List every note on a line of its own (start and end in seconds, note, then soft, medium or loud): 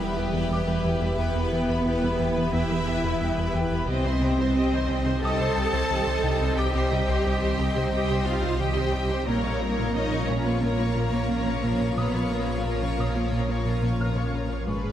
0.00 3.89 E1 medium
0.00 3.85 E2 medium
0.00 0.11 E3 medium
0.00 1.16 G3 medium
0.00 0.10 B3 medium
0.00 3.89 B3 medium
0.00 3.89 E4 medium
0.00 1.18 G4 medium
0.00 0.16 G4 soft
0.00 0.82 B4 soft
0.00 3.70 B4 medium
0.00 3.85 B4 medium
0.00 0.16 B4 soft
0.00 3.70 E5 medium
0.00 0.18 E5 soft
0.00 0.82 B5 medium
0.00 0.18 B5 soft
0.17 0.28 E2 medium
0.17 0.27 E4 medium
0.17 0.33 G4 soft
0.17 0.33 B4 soft
0.17 0.34 G5 soft
0.33 0.44 E2 medium
0.33 0.44 E3 medium
0.33 0.49 G4 soft
0.33 0.49 B4 soft
0.33 0.51 E5 soft
0.33 0.51 B5 soft
0.50 0.61 E2 medium
0.50 0.61 G3 medium
0.50 0.66 G4 soft
0.50 0.66 B4 soft
0.50 0.67 G5 soft
0.50 2.50 D6 soft
0.67 0.78 E2 medium
0.67 0.78 G3 soft
0.67 0.84 G4 soft
0.67 0.84 B4 soft
0.67 0.85 E5 soft
0.67 0.85 B5 soft
0.85 0.95 E2 medium
0.85 0.95 E3 medium
0.85 1.01 G4 soft
0.85 1.01 B4 soft
0.85 1.02 G5 soft
1.01 1.12 E2 medium
1.01 1.11 E4 medium
1.01 1.18 G4 soft
1.01 1.17 B4 soft
1.01 1.19 E5 soft
1.01 1.19 B5 soft
1.18 1.29 E2 medium
1.18 1.28 E3 medium
1.18 2.51 B3 medium
1.18 1.34 G4 soft
1.18 2.51 B4 medium
1.18 1.34 B4 soft
1.18 1.35 G5 medium
1.35 1.46 E2 soft
1.35 1.45 E4 medium
1.35 1.52 G4 soft
1.35 1.51 B4 soft
1.35 1.53 E5 soft
1.35 1.53 B5 soft
1.51 1.63 E3 medium
1.51 1.62 B3 medium
1.51 1.68 G4 soft
1.51 1.68 B4 soft
1.51 1.70 G5 soft
1.68 1.80 E2 medium
1.68 1.79 E3 medium
1.68 1.86 G4 soft
1.68 1.85 B4 soft
1.68 1.86 E5 soft
1.68 1.86 B5 soft
1.85 1.96 E2 medium
1.85 1.96 E4 medium
1.85 2.02 G4 soft
1.85 2.02 B4 soft
1.85 2.02 G5 soft
2.02 2.14 E2 medium
2.02 2.12 G3 medium
2.02 2.19 G4 soft
2.02 2.19 B4 soft
2.02 2.20 E5 soft
2.02 2.20 B5 soft
2.19 2.30 E2 medium
2.19 2.29 E3 medium
2.19 2.36 G4 soft
2.19 2.36 B4 soft
2.19 2.37 G5 soft
2.36 2.47 E3 medium
2.36 2.47 B3 medium
2.36 2.53 G4 soft
2.36 2.53 B4 soft
2.36 2.54 E5 soft
2.36 2.54 B5 soft
2.53 2.64 E2 medium
2.53 2.63 E3 medium
2.53 3.55 E4 medium
2.53 2.70 G4 medium
2.53 2.70 B4 soft
2.53 3.53 E5 medium
2.53 2.69 G5 medium
2.70 2.81 E3 medium
2.70 2.80 B3 soft
2.70 2.86 G4 soft
2.70 2.86 B4 soft
2.70 2.87 E5 soft
2.70 2.87 B5 soft
2.87 2.97 E2 medium
2.87 2.97 E4 medium
2.87 3.03 G4 soft
2.87 3.03 B4 soft
2.87 3.05 G5 medium
3.04 3.14 E2 medium
3.04 3.14 E3 medium
3.04 3.20 G4 soft
3.04 3.20 B4 soft
3.04 3.21 E5 soft
3.04 3.21 B5 soft
3.21 3.32 E2 medium
3.21 3.31 G3 medium
3.21 3.37 G4 soft
3.21 3.37 B4 soft
3.21 3.37 G5 soft
3.38 3.48 E2 medium
3.38 3.48 G3 medium
3.38 3.54 G4 soft
3.38 3.54 B4 soft
3.38 3.55 E5 soft
3.38 3.55 B5 soft
3.55 3.65 E2 medium
3.55 3.65 E3 medium
3.55 3.71 G4 soft
3.55 3.70 B4 soft
3.55 3.72 G5 soft
3.72 3.82 E2 medium
3.72 3.82 E4 medium
3.72 3.87 G4 medium
3.72 3.88 B4 medium
3.72 3.89 E5 soft
3.72 3.89 B5 soft
3.87 9.30 C2 medium
3.87 3.99 C2 medium
3.87 9.24 C2 medium
3.87 3.99 C3 medium
3.87 9.28 G3 medium
3.87 5.19 C4 medium
3.87 9.28 C4 medium
3.87 9.28 D#4 medium
3.87 4.04 G4 medium
3.87 9.23 C5 medium
3.87 5.19 C5 medium
3.87 4.05 C5 medium
3.87 9.23 D#5 medium
3.87 9.28 D#5 medium
3.87 4.04 D#5 medium
3.87 4.04 G5 medium
4.05 4.15 C2 soft
4.05 4.15 C4 medium
4.05 4.22 C5 soft
4.05 4.22 D#5 soft
4.05 4.22 C6 soft
4.21 4.32 C3 medium
4.21 4.32 G3 medium
4.21 4.39 G4 medium
4.21 4.39 C5 soft
4.21 4.39 D#5 medium
4.21 4.39 G5 medium
4.38 4.48 C2 medium
4.38 4.49 C3 medium
4.38 4.56 C5 medium
4.38 4.56 D#5 soft
4.38 4.56 C6 soft
4.55 4.65 C2 soft
4.55 4.66 C4 medium
4.55 4.71 G4 medium
4.55 4.72 C5 soft
4.55 4.71 D#5 medium
4.55 4.72 G5 medium
4.72 4.82 C2 medium
4.72 4.83 D#3 medium
4.72 4.89 C5 soft
4.72 4.90 D#5 soft
4.72 4.90 C6 soft
4.88 4.99 C2 medium
4.88 5.00 C3 medium
4.88 5.06 G4 soft
4.88 5.06 C5 soft
4.88 5.06 D#5 soft
4.88 5.06 G5 soft
5.05 5.16 C3 medium
5.05 5.16 G3 medium
5.05 5.23 C5 medium
5.05 5.23 D#5 medium
5.05 5.23 C6 soft
5.22 5.33 C2 medium
5.22 5.33 C3 medium
5.22 5.39 G4 medium
5.22 6.55 A4 loud
5.22 5.39 C5 medium
5.22 5.39 D#5 medium
5.22 7.22 D#5 soft
5.22 5.39 G5 medium
5.22 6.56 A5 loud
5.22 7.22 D#6 medium
5.39 5.50 C3 medium
5.39 5.50 G3 medium
5.39 5.57 C5 soft
5.39 5.56 D#5 medium
5.39 5.57 C6 medium
5.56 5.67 C2 medium
5.56 5.67 C4 medium
5.56 5.73 G4 soft
5.56 5.74 C5 soft
5.56 5.73 D#5 soft
5.56 5.74 G5 medium
5.73 5.83 C2 medium
5.73 5.84 C3 medium
5.73 5.90 C5 soft
5.73 5.91 D#5 medium
5.73 5.91 C6 medium
5.90 6.01 C2 medium
5.90 6.01 D#3 medium
5.90 6.06 G4 soft
5.90 6.06 C5 medium
5.90 6.06 D#5 soft
5.90 6.07 G5 soft
6.07 6.17 C2 medium
6.07 6.17 D#3 soft
6.07 6.24 C5 soft
6.07 6.25 D#5 soft
6.07 6.25 C6 medium
6.23 6.34 C2 medium
6.23 6.34 C3 medium
6.23 6.41 G4 soft
6.23 6.41 C5 medium
6.23 6.41 D#5 medium
6.23 6.41 G5 soft
6.41 6.51 C2 medium
6.41 6.51 C4 medium
6.41 6.58 C5 medium
6.41 6.58 D#5 soft
6.41 6.58 C6 soft
6.57 6.69 C2 medium
6.57 6.68 C3 medium
6.57 6.73 G4 medium
6.57 7.91 G4 medium
6.57 6.74 C5 medium
6.57 6.73 D#5 medium
6.57 7.90 G5 medium
6.57 6.74 G5 medium
6.57 8.56 D6 medium
6.74 6.85 C2 medium
6.74 6.85 C4 medium
6.74 6.91 C5 medium
6.74 6.92 D#5 medium
6.74 6.92 C6 medium
6.92 7.02 C3 medium
6.92 7.02 G3 medium
6.92 7.09 G4 medium
6.92 7.09 C5 medium
6.92 7.09 D#5 medium
6.92 7.09 G5 soft
7.09 7.19 C2 medium
7.09 7.19 C3 medium
7.09 7.25 C5 medium
7.09 7.26 D#5 medium
7.09 7.26 C6 medium
7.25 7.36 C2 medium
7.25 7.36 C4 medium
7.25 7.41 G4 medium
7.25 7.41 C5 medium
7.25 7.41 D#5 medium
7.25 7.41 G5 medium
7.42 7.53 C2 medium
7.42 7.52 D#3 medium
7.42 7.59 C5 medium
7.42 7.60 D#5 soft
7.42 7.60 C6 medium
7.58 7.70 C2 medium
7.58 7.69 C3 medium
7.58 7.76 G4 soft
7.58 7.76 C5 medium
7.58 7.76 D#5 soft
7.58 7.76 G5 medium
7.75 7.87 C3 medium
7.75 7.86 G3 medium
7.75 7.93 C5 medium
7.75 7.93 D#5 medium
7.75 7.93 C6 soft
7.91 8.03 C2 medium
7.91 8.03 C3 medium
7.91 8.26 G4 medium
7.91 8.09 G4 medium
7.91 8.08 C5 medium
7.91 8.09 D#5 medium
7.91 8.08 G5 medium
7.91 8.26 G5 medium
8.08 8.21 C3 medium
8.08 8.20 G3 medium
8.08 8.27 C5 soft
8.08 8.26 D#5 medium
8.08 8.26 C6 medium
8.25 8.37 C2 soft
8.25 8.36 C4 medium
8.25 8.60 F4 medium
8.25 8.44 G4 medium
8.25 8.43 C5 medium
8.25 8.44 D#5 soft
8.25 8.60 F5 medium
8.25 8.42 G5 medium
8.41 8.54 C2 medium
8.41 8.53 C3 medium
8.41 8.59 D#5 medium
8.41 8.59 C6 medium
8.45 8.61 C5 soft
8.57 8.71 C2 medium
8.57 8.70 D#3 medium
8.57 9.26 G4 medium
8.57 8.74 C5 medium
8.57 8.74 G5 soft
8.57 9.27 G5 medium
8.61 8.76 G4 soft
8.61 8.77 D#5 soft
8.75 8.88 C2 medium
8.75 8.87 D#3 medium
8.75 8.95 C5 soft
8.75 8.93 D#5 soft
8.75 8.93 C6 medium
8.91 9.05 C2 medium
8.91 9.04 C3 medium
8.91 9.11 G4 soft
8.91 9.10 C5 soft
8.91 9.09 G5 soft
8.95 9.11 D#5 soft
9.09 9.22 C2 medium
9.09 9.20 C4 medium
9.09 9.28 C5 medium
9.09 9.27 D#5 soft
9.09 9.27 C6 soft
9.25 14.66 A#1 medium
9.25 14.43 A#1 medium
9.25 9.39 A#2 medium
9.25 14.66 F3 medium
9.25 9.95 A#3 medium
9.25 9.37 A#3 medium
9.25 14.67 C#4 medium
9.25 14.67 F4 medium
9.25 9.93 A#4 medium
9.25 9.44 A#4 medium
9.25 9.42 C#5 medium
9.25 14.67 C#5 medium
9.25 14.31 C#5 medium
9.25 9.44 C#5 medium
9.25 14.31 F5 medium
9.25 9.42 A#5 medium
9.42 9.56 A#2 soft
9.42 9.54 A#4 medium
9.42 9.61 A#4 medium
9.42 9.61 C#5 medium
9.42 9.60 F5 soft
9.42 9.60 C#6 soft
9.59 9.72 A#3 medium
9.59 9.71 F4 medium
9.59 9.78 A#4 medium
9.59 9.77 C#5 soft
9.59 9.78 C#5 medium
9.59 9.77 A#5 soft
9.77 9.89 A#2 medium
9.77 9.88 A#3 medium
9.77 9.95 A#4 medium
9.77 9.95 C#5 medium
9.77 9.95 F5 medium
9.77 9.95 C#6 soft
9.94 10.06 A#2 medium
9.94 10.29 D#4 medium
9.94 10.05 A#4 medium
9.94 10.11 A#4 soft
9.94 10.10 C#5 soft
9.94 10.11 C#5 soft
9.94 10.29 D#5 medium
9.94 10.10 A#5 medium
10.11 10.23 A#2 medium
10.11 10.22 C#4 medium
10.11 10.28 A#4 soft
10.11 10.28 C#5 soft
10.11 10.29 F5 soft
10.11 10.29 C#6 soft
10.28 10.40 A#2 medium
10.28 10.38 A#3 medium
10.28 10.46 C#4 medium
10.28 10.45 A#4 soft
10.28 10.45 C#5 medium
10.28 10.45 C#5 soft
10.28 10.46 C#5 soft
10.28 10.46 A#5 soft
10.45 10.56 A#3 medium
10.45 10.63 B3 medium
10.45 10.55 F4 medium
10.45 10.61 A#4 soft
10.45 10.62 B4 medium
10.45 10.62 C#5 soft
10.45 10.63 F5 soft
10.45 10.63 C#6 soft
10.62 10.73 A#2 medium
10.62 10.72 A#3 medium
10.62 11.97 A#3 medium
10.62 11.94 A#4 medium
10.62 10.78 A#4 soft
10.62 10.78 C#5 medium
10.62 10.79 C#5 soft
10.62 10.79 A#5 soft
10.79 10.90 A#3 medium
10.79 10.89 F4 medium
10.79 10.95 A#4 soft
10.79 10.95 C#5 soft
10.79 10.97 F5 soft
10.79 10.97 C#6 soft
10.96 11.06 A#2 medium
10.96 11.06 A#4 medium
10.96 11.12 A#4 soft
10.96 11.12 C#5 soft
10.96 11.14 C#5 soft
10.96 11.14 A#5 soft
11.13 11.23 A#2 medium
11.13 11.23 A#3 medium
11.13 11.29 A#4 soft
11.13 11.29 C#5 soft
11.13 11.31 F5 soft
11.13 11.31 C#6 soft
11.29 11.40 A#2 medium
11.29 11.40 C#4 medium
11.29 11.46 A#4 soft
11.29 11.46 C#5 soft
11.29 11.46 A#5 soft
11.46 11.57 A#2 medium
11.46 11.57 C#4 soft
11.46 11.62 A#4 soft
11.46 11.62 C#5 soft
11.46 11.64 F5 soft
11.46 11.64 C#6 soft
11.63 11.74 A#2 medium
11.63 11.73 A#3 medium
11.63 11.80 A#4 soft
11.63 11.79 C#5 soft
11.63 11.81 C#5 soft
11.63 11.81 A#5 soft
11.80 11.91 A#2 medium
11.80 11.90 A#4 medium
11.80 11.96 A#4 soft
11.80 11.96 C#5 soft
11.80 11.98 F5 soft
11.80 11.98 C#6 soft
11.96 12.08 A#2 medium
11.96 12.07 A#3 medium
11.96 12.65 B3 medium
11.96 12.13 A#4 soft
11.96 12.63 B4 medium
11.96 12.13 C#5 soft
11.96 12.14 C#5 soft
11.96 12.15 A#5 soft
11.96 12.99 D#6 soft
12.13 12.25 A#2 soft
12.13 12.24 A#4 medium
12.13 12.30 A#4 soft
12.13 12.30 C#5 soft
12.13 12.32 F5 soft
12.13 12.32 C#6 soft
12.31 12.41 A#3 soft
12.31 12.41 F4 medium
12.31 12.46 A#4 soft
12.31 12.47 C#5 soft
12.31 12.49 C#5 soft
12.31 12.49 A#5 soft
12.47 12.58 A#2 medium
12.47 12.58 A#3 medium
12.47 12.63 A#4 soft
12.47 12.63 C#5 soft
12.47 12.66 F5 soft
12.47 12.66 C#6 soft
12.64 12.75 A#2 soft
12.64 14.00 A#3 soft
12.64 12.74 A#4 medium
12.64 12.80 A#4 soft
12.64 14.00 A#4 soft
12.64 12.80 C#5 soft
12.64 12.81 C#5 soft
12.64 12.81 A#5 soft
12.82 12.93 A#2 medium
12.82 12.92 C#4 medium
12.82 12.97 A#4 soft
12.82 12.97 C#5 soft
12.82 12.99 F5 soft
12.82 12.99 C#6 soft
12.98 13.09 A#2 medium
12.98 13.08 A#3 medium
12.98 13.13 A#4 soft
12.98 13.13 C#5 soft
12.98 13.16 C#5 soft
12.98 13.16 A#5 soft
12.98 14.64 D#6 soft
13.15 13.26 A#3 medium
13.15 13.25 F4 medium
13.15 13.31 A#4 soft
13.15 13.31 C#5 soft
13.15 13.32 F5 soft
13.15 13.32 C#6 soft
13.32 13.42 A#2 medium
13.32 13.42 A#3 medium
13.32 13.47 A#4 soft
13.32 13.48 C#5 soft
13.32 13.48 A#5 soft
13.48 13.59 A#3 medium
13.48 13.59 F4 medium
13.48 13.64 A#4 soft
13.48 13.64 C#5 soft
13.48 13.67 F5 soft
13.48 13.67 C#6 soft
13.65 13.76 A#2 medium
13.65 13.80 A#4 soft
13.65 13.76 A#4 medium
13.65 13.81 C#5 soft
13.65 13.83 C#5 soft
13.65 13.83 A#5 soft
13.81 13.93 A#2 medium
13.81 13.93 A#3 medium
13.81 13.97 A#4 soft
13.81 13.97 C#5 soft
13.81 14.00 F5 soft
13.81 14.00 C#6 soft
13.98 14.10 A#2 medium
13.98 14.09 C#4 medium
13.98 14.15 A#4 soft
13.98 14.15 C#5 soft
13.98 14.16 C#5 soft
13.98 14.16 A#5 soft
13.98 14.64 F6 soft
14.16 14.26 A#2 soft
14.16 14.26 C#4 soft
14.16 14.32 A#4 soft
14.16 14.32 C#5 soft
14.16 14.33 F5 soft
14.16 14.34 C#6 soft
14.33 14.43 A#2 medium
14.33 14.43 A#3 medium
14.33 14.48 A#4 soft
14.33 14.48 C#5 soft
14.33 14.51 C#5 soft
14.33 14.51 A#5 soft
14.49 14.60 A#2 soft
14.49 14.60 A#4 medium
14.49 14.67 A#4 soft
14.49 14.67 C#5 soft
14.49 14.68 F5 soft
14.49 14.68 C#6 soft
14.66 14.92 G#1 medium
14.66 14.92 G#2 soft
14.66 14.77 G#2 medium
14.66 14.92 D#3 medium
14.66 14.77 G#3 medium
14.66 14.92 B3 soft
14.66 14.92 D#4 medium
14.66 14.92 G#4 soft
14.66 14.92 G#4 medium
14.66 14.92 G#4 soft
14.66 14.92 B4 soft
14.66 14.92 B4 medium
14.66 14.92 B4 soft
14.66 14.92 C#6 soft
14.84 14.92 G#2 soft
14.84 14.92 G#4 medium